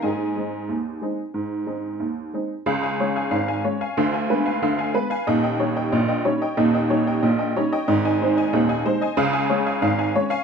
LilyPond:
<<
  \new Staff \with { instrumentName = "Honky-tonk piano" } { \time 2/4 \key aes \major \tempo 4 = 92 <aes' ees'' aes''>2~ | <aes' ees'' aes''>4 r4 | f''16 <f'' aes''>16 des''16 <f'' aes''>16 f''16 <f'' aes''>16 des''16 <f'' aes''>16 | f''16 <f'' aes''>16 b'16 <f'' aes''>16 f''16 <f'' aes''>16 b'16 <f'' aes''>16 |
ees''16 <ees'' g''>16 des''16 <ees'' g''>16 ees''16 <ees'' g''>16 des''16 <ees'' g''>16 | ees''16 <ees'' g''>16 des''16 <ees'' g''>16 ees''16 <ees'' g''>16 des''16 <ees'' g''>16 | ees''16 <ees'' aes''>16 c''16 <ees'' aes''>16 ees''16 <ees'' aes''>16 c''16 <ees'' aes''>16 | f''16 <f'' aes''>16 des''16 <f'' aes''>16 f''16 <f'' aes''>16 des''16 <f'' aes''>16 | }
  \new Staff \with { instrumentName = "Honky-tonk piano" } { \clef bass \time 2/4 \key aes \major aes,8 <aes c' ees'>8 ees,8 <aes c' ees'>8 | aes,8 <aes c' ees'>8 ees,8 <aes c' ees'>8 | <des, des>8 <aes des'>8 <aes,, aes,>8 <aes des'>8 | <d, d>8 <aes b>8 <d, d>8 <aes b>8 |
<ees,, ees,>8 <g des' ees'>8 <bes,, bes,>8 <g des' ees'>8 | <ees,, ees,>8 <g des' ees'>8 <bes,, bes,>8 <g des' ees'>8 | <aes,, aes,>8 <aes c' ees'>8 <ees,, ees,>8 <aes c' ees'>8 | <des, des>8 <aes des'>8 <aes,, aes,>8 <aes des'>8 | }
>>